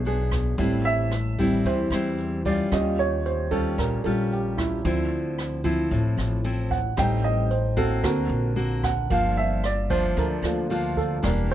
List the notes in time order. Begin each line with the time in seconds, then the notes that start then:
Already playing: B1 B2 F#3 G#3 D4 C#5 E5
0.05 B3 D4 G#4, closed hi-hat
0.32 kick, cross-stick, closed hi-hat
0.58 A1 A2 G3 C4 E4, kick, closed hi-hat
0.85 E5, closed hi-hat
1.11 cross-stick, closed hi-hat
1.38 G3 C4 E4, kick, closed hi-hat
1.65 E2 E3 C5, kick, closed hi-hat
1.90 E2 G3 C4 E4, cross-stick, closed hi-hat
2.18 closed hi-hat
2.45 G3 C#4 F4 D5, kick, closed hi-hat
2.72 D#2 D#3 G3 C#4 F4 D#5, kick, cross-stick, closed hi-hat
2.99 C#5, closed hi-hat
3.25 C5, closed hi-hat
3.51 G3 C#4 F4 A4, kick, closed hi-hat
3.78 A#1 A#2 A#4, kick, cross-stick, closed hi-hat
4.04 A#1 G3 C#4 F4 A4, closed hi-hat
4.32 G4, closed hi-hat
4.58 E4, kick, cross-stick, closed hi-hat
4.85 D2 D3 F3 C4 E4, kick, closed hi-hat
5.12 closed hi-hat
5.39 cross-stick, closed hi-hat
5.64 F3 C4 E4, kick, closed hi-hat
5.91 A1 A2, kick, closed hi-hat
6.17 A1, cross-stick, closed hi-hat
6.44 F3 C4 E4, closed hi-hat
6.71 F#5, kick, closed hi-hat
6.97 A1 A2 G3 C4 D#4 G5, kick, cross-stick, closed hi-hat
7.24 D#5, closed hi-hat
7.50 C5, closed hi-hat
7.77 A#3 C4 F#4 A4, kick, closed hi-hat
8.03 D2 D3 A#3 C4 F#4 A#4, kick, cross-stick, closed hi-hat
8.29 A#1, closed hi-hat
8.56 A#3 C4 F#4, closed hi-hat
8.84 F#5, kick, cross-stick, closed hi-hat
9.10 G1 G2 F3 A#3 D4 F4 F5, kick, closed hi-hat
9.37 E5, closed hi-hat
9.64 D5, cross-stick, closed hi-hat
9.90 F3 A#3 D4 C5, kick, closed hi-hat
10.17 D2 D3 A#4, kick, closed hi-hat
10.42 D2 A3 A#3 D4 F4, cross-stick, closed hi-hat
10.70 F3 A#3 D4 F4, closed hi-hat
10.97 A4, kick, closed hi-hat
11.22 E1 E3 G3 A#3 D4 G4 A#4, kick, cross-stick, closed hi-hat
11.50 closed hi-hat